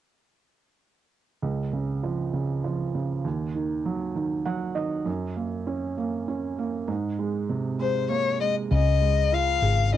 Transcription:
0, 0, Header, 1, 4, 480
1, 0, Start_track
1, 0, Key_signature, -5, "major"
1, 0, Tempo, 607287
1, 1132, Time_signature, 6, 3, 24, 8
1, 7882, End_track
2, 0, Start_track
2, 0, Title_t, "Violin"
2, 0, Program_c, 0, 40
2, 6173, Note_on_c, 0, 72, 66
2, 6394, Note_off_c, 0, 72, 0
2, 6412, Note_on_c, 0, 73, 71
2, 6635, Note_off_c, 0, 73, 0
2, 6646, Note_on_c, 0, 75, 70
2, 6755, Note_off_c, 0, 75, 0
2, 6906, Note_on_c, 0, 75, 80
2, 7384, Note_on_c, 0, 77, 85
2, 7395, Note_off_c, 0, 75, 0
2, 7858, Note_off_c, 0, 77, 0
2, 7882, End_track
3, 0, Start_track
3, 0, Title_t, "Felt piano"
3, 0, Program_c, 1, 0
3, 1125, Note_on_c, 1, 37, 47
3, 1265, Control_c, 1, 64, 127
3, 1366, Note_on_c, 1, 49, 35
3, 1607, Note_on_c, 1, 53, 38
3, 1833, Note_off_c, 1, 49, 0
3, 1845, Note_on_c, 1, 49, 36
3, 2074, Note_off_c, 1, 53, 0
3, 2086, Note_on_c, 1, 53, 42
3, 2317, Note_off_c, 1, 49, 0
3, 2329, Note_on_c, 1, 49, 38
3, 2541, Note_off_c, 1, 37, 0
3, 2557, Note_off_c, 1, 53, 0
3, 2564, Note_on_c, 1, 39, 45
3, 2565, Note_off_c, 1, 49, 0
3, 2585, Control_c, 1, 64, 0
3, 2719, Control_c, 1, 64, 127
3, 2807, Note_on_c, 1, 51, 36
3, 3047, Note_on_c, 1, 54, 42
3, 3271, Note_off_c, 1, 51, 0
3, 3283, Note_on_c, 1, 51, 39
3, 3514, Note_off_c, 1, 54, 0
3, 3522, Note_on_c, 1, 78, 55
3, 3526, Note_on_c, 1, 54, 45
3, 3745, Note_off_c, 1, 51, 0
3, 3749, Note_off_c, 1, 78, 0
3, 3755, Note_on_c, 1, 75, 50
3, 3757, Note_on_c, 1, 51, 41
3, 3972, Note_off_c, 1, 39, 0
3, 3985, Note_off_c, 1, 75, 0
3, 3992, Note_off_c, 1, 54, 0
3, 3995, Note_on_c, 1, 42, 47
3, 3996, Note_off_c, 1, 51, 0
3, 4021, Control_c, 1, 64, 0
3, 4143, Control_c, 1, 64, 127
3, 4238, Note_on_c, 1, 58, 37
3, 4480, Note_on_c, 1, 61, 42
3, 4710, Note_off_c, 1, 58, 0
3, 4721, Note_on_c, 1, 58, 44
3, 4951, Note_off_c, 1, 61, 0
3, 4963, Note_on_c, 1, 61, 45
3, 5193, Note_off_c, 1, 58, 0
3, 5205, Note_on_c, 1, 58, 41
3, 5405, Note_off_c, 1, 42, 0
3, 5428, Note_off_c, 1, 61, 0
3, 5435, Note_on_c, 1, 44, 53
3, 5437, Note_off_c, 1, 58, 0
3, 5455, Control_c, 1, 64, 0
3, 5587, Control_c, 1, 64, 127
3, 5681, Note_on_c, 1, 56, 38
3, 5922, Note_on_c, 1, 48, 43
3, 6148, Note_off_c, 1, 56, 0
3, 6160, Note_on_c, 1, 56, 45
3, 6399, Note_on_c, 1, 58, 45
3, 6631, Note_off_c, 1, 56, 0
3, 6643, Note_on_c, 1, 56, 44
3, 6855, Note_off_c, 1, 44, 0
3, 6861, Note_off_c, 1, 48, 0
3, 6872, Note_off_c, 1, 58, 0
3, 6880, Note_off_c, 1, 56, 0
3, 6883, Note_on_c, 1, 49, 54
3, 6902, Control_c, 1, 64, 0
3, 7049, Control_c, 1, 64, 127
3, 7124, Note_on_c, 1, 56, 39
3, 7368, Note_on_c, 1, 65, 46
3, 7610, Note_on_c, 1, 68, 46
3, 7854, Note_on_c, 1, 61, 48
3, 7882, Note_off_c, 1, 49, 0
3, 7882, Note_off_c, 1, 56, 0
3, 7882, Note_off_c, 1, 61, 0
3, 7882, Note_off_c, 1, 65, 0
3, 7882, Note_off_c, 1, 68, 0
3, 7882, End_track
4, 0, Start_track
4, 0, Title_t, "Fingered electric bass"
4, 0, Program_c, 2, 33
4, 6887, Note_on_c, 2, 37, 89
4, 7580, Note_off_c, 2, 37, 0
4, 7604, Note_on_c, 2, 32, 70
4, 7882, Note_off_c, 2, 32, 0
4, 7882, End_track
0, 0, End_of_file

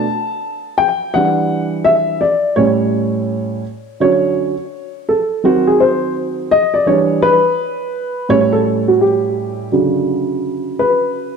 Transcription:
0, 0, Header, 1, 2, 480
1, 0, Start_track
1, 0, Key_signature, 2, "major"
1, 0, Tempo, 714286
1, 774, Time_signature, 4, 2, 24, 8
1, 7639, End_track
2, 0, Start_track
2, 0, Title_t, "Upright piano"
2, 0, Program_c, 0, 0
2, 0, Note_on_c, 0, 81, 108
2, 522, Note_on_c, 0, 79, 91
2, 549, Note_off_c, 0, 81, 0
2, 765, Note_on_c, 0, 78, 95
2, 774, Note_on_c, 0, 52, 52
2, 775, Note_off_c, 0, 79, 0
2, 778, Note_on_c, 0, 55, 47
2, 782, Note_on_c, 0, 62, 53
2, 1240, Note_on_c, 0, 76, 93
2, 1264, Note_off_c, 0, 78, 0
2, 1467, Note_off_c, 0, 52, 0
2, 1469, Note_off_c, 0, 55, 0
2, 1471, Note_off_c, 0, 62, 0
2, 1484, Note_on_c, 0, 74, 76
2, 1494, Note_off_c, 0, 76, 0
2, 1720, Note_on_c, 0, 73, 86
2, 1726, Note_on_c, 0, 45, 61
2, 1730, Note_on_c, 0, 55, 56
2, 1736, Note_off_c, 0, 74, 0
2, 1736, Note_on_c, 0, 61, 67
2, 2420, Note_off_c, 0, 73, 0
2, 2423, Note_off_c, 0, 45, 0
2, 2425, Note_off_c, 0, 55, 0
2, 2428, Note_off_c, 0, 61, 0
2, 2689, Note_on_c, 0, 50, 47
2, 2694, Note_on_c, 0, 54, 47
2, 2697, Note_on_c, 0, 73, 86
2, 2698, Note_on_c, 0, 61, 53
2, 3034, Note_off_c, 0, 50, 0
2, 3037, Note_off_c, 0, 54, 0
2, 3039, Note_off_c, 0, 61, 0
2, 3418, Note_on_c, 0, 69, 76
2, 3437, Note_off_c, 0, 73, 0
2, 3639, Note_off_c, 0, 69, 0
2, 3654, Note_on_c, 0, 51, 52
2, 3658, Note_on_c, 0, 54, 55
2, 3660, Note_on_c, 0, 60, 63
2, 3664, Note_on_c, 0, 66, 85
2, 3813, Note_on_c, 0, 68, 71
2, 3814, Note_off_c, 0, 66, 0
2, 3900, Note_off_c, 0, 68, 0
2, 3900, Note_on_c, 0, 72, 78
2, 4121, Note_off_c, 0, 72, 0
2, 4347, Note_off_c, 0, 51, 0
2, 4349, Note_off_c, 0, 54, 0
2, 4350, Note_off_c, 0, 60, 0
2, 4378, Note_on_c, 0, 75, 94
2, 4528, Note_on_c, 0, 74, 83
2, 4531, Note_off_c, 0, 75, 0
2, 4611, Note_on_c, 0, 52, 49
2, 4616, Note_on_c, 0, 55, 45
2, 4617, Note_on_c, 0, 73, 83
2, 4618, Note_off_c, 0, 74, 0
2, 4620, Note_on_c, 0, 62, 57
2, 4855, Note_on_c, 0, 71, 104
2, 4863, Note_off_c, 0, 73, 0
2, 4955, Note_off_c, 0, 52, 0
2, 4958, Note_off_c, 0, 55, 0
2, 4960, Note_off_c, 0, 62, 0
2, 5571, Note_on_c, 0, 45, 61
2, 5576, Note_on_c, 0, 55, 53
2, 5577, Note_on_c, 0, 73, 105
2, 5579, Note_on_c, 0, 61, 66
2, 5596, Note_off_c, 0, 71, 0
2, 5729, Note_on_c, 0, 69, 87
2, 5731, Note_off_c, 0, 73, 0
2, 5968, Note_on_c, 0, 66, 69
2, 5974, Note_off_c, 0, 69, 0
2, 6056, Note_on_c, 0, 67, 69
2, 6058, Note_off_c, 0, 66, 0
2, 6506, Note_off_c, 0, 45, 0
2, 6508, Note_off_c, 0, 55, 0
2, 6508, Note_off_c, 0, 67, 0
2, 6509, Note_off_c, 0, 61, 0
2, 6532, Note_on_c, 0, 50, 47
2, 6535, Note_on_c, 0, 54, 45
2, 6541, Note_on_c, 0, 49, 57
2, 7253, Note_on_c, 0, 71, 78
2, 7639, Note_off_c, 0, 49, 0
2, 7639, Note_off_c, 0, 50, 0
2, 7639, Note_off_c, 0, 54, 0
2, 7639, Note_off_c, 0, 71, 0
2, 7639, End_track
0, 0, End_of_file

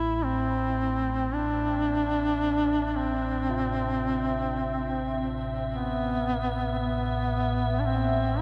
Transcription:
0, 0, Header, 1, 5, 480
1, 0, Start_track
1, 0, Key_signature, 0, "minor"
1, 0, Tempo, 1090909
1, 578, Time_signature, 4, 2, 24, 8
1, 3703, End_track
2, 0, Start_track
2, 0, Title_t, "Ambient pad"
2, 0, Program_c, 0, 92
2, 586, Note_on_c, 0, 76, 80
2, 3703, Note_off_c, 0, 76, 0
2, 3703, End_track
3, 0, Start_track
3, 0, Title_t, "Duduk"
3, 0, Program_c, 1, 69
3, 0, Note_on_c, 1, 64, 96
3, 108, Note_on_c, 1, 60, 94
3, 114, Note_off_c, 1, 64, 0
3, 590, Note_on_c, 1, 62, 104
3, 597, Note_off_c, 1, 60, 0
3, 1301, Note_on_c, 1, 60, 91
3, 1307, Note_off_c, 1, 62, 0
3, 2381, Note_off_c, 1, 60, 0
3, 2512, Note_on_c, 1, 59, 92
3, 2968, Note_off_c, 1, 59, 0
3, 2987, Note_on_c, 1, 59, 89
3, 3431, Note_on_c, 1, 62, 62
3, 3437, Note_off_c, 1, 59, 0
3, 3456, Note_on_c, 1, 60, 91
3, 3463, Note_off_c, 1, 62, 0
3, 3700, Note_off_c, 1, 60, 0
3, 3703, End_track
4, 0, Start_track
4, 0, Title_t, "Bronze metallophone"
4, 0, Program_c, 2, 11
4, 1538, Note_on_c, 2, 48, 73
4, 3703, Note_off_c, 2, 48, 0
4, 3703, End_track
5, 0, Start_track
5, 0, Title_t, "Synth drone"
5, 0, Program_c, 3, 95
5, 0, Note_on_c, 3, 33, 64
5, 0, Note_on_c, 3, 45, 64
5, 561, Note_off_c, 3, 45, 0
5, 566, Note_on_c, 3, 45, 69
5, 567, Note_off_c, 3, 33, 0
5, 572, Note_on_c, 3, 33, 66
5, 3703, Note_off_c, 3, 33, 0
5, 3703, Note_off_c, 3, 45, 0
5, 3703, End_track
0, 0, End_of_file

